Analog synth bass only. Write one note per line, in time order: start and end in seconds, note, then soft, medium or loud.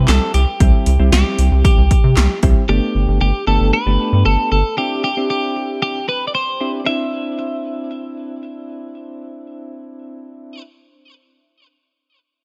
0.08 0.19 C2 loud
0.34 0.45 C2 loud
0.60 0.72 C2 loud
0.87 0.98 C2 loud
1.00 1.11 C2 loud
1.12 1.24 C2 loud
1.39 1.50 C2 loud
1.52 1.63 C2 loud
1.78 1.89 C2 loud
2.04 2.15 C3 loud
2.17 2.28 C2 loud
2.43 2.54 C2 loud
2.69 2.80 G1 loud
2.95 3.06 G1 loud
3.08 3.19 G1 loud
3.21 3.32 G1 loud
3.47 3.59 G1 loud
3.61 3.72 G1 loud
3.86 3.98 G1 loud
4.13 4.24 G2 loud
4.26 4.37 G1 loud
4.52 4.63 G1 medium